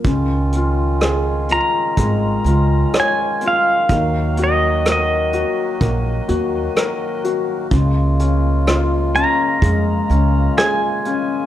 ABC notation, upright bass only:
X:1
M:4/4
L:1/8
Q:1/4=63
K:Db
V:1 name="Upright bass" clef=bass
D,,4 A,,, D,, z2 | E,,4 B,,, E,, z2 | D,,4 F,, D,, z2 |]